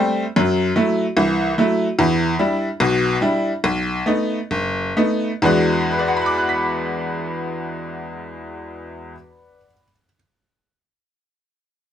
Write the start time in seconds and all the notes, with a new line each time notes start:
Already playing: G3 A3 C4
0.36 F#2 F#3
0.76 F#3 A3 E4
1.17 C2 E3
1.58 F#3 A3 E4
1.99 E2 E3
2.39 G3 D4 E4
2.80 B1 B2
3.21 G3 D4 E4
3.64 B1
4.06 A3 B3 D#4
4.51 F#1
4.97 A3 B3 D#4
5.42 E2 E3 G#3 B3 D4 F#4
5.92 B4
5.99 D5
6.08 F#5
6.17 B5
6.26 D6
6.38 F#6
6.49 B6